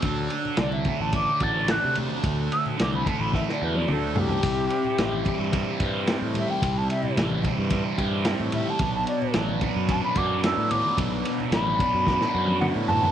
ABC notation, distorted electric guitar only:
X:1
M:4/4
L:1/8
Q:1/4=110
K:Dmix
V:1 name="Distorted electric guitar"
D,2 D, A, D F D A, | D,2 D, A, D F D A, | C,2 E, G, C G C G, | C,2 E, G, C G C G, |
B,,2 F, B, D F D B, | B,,2 F, B, D F D B, |]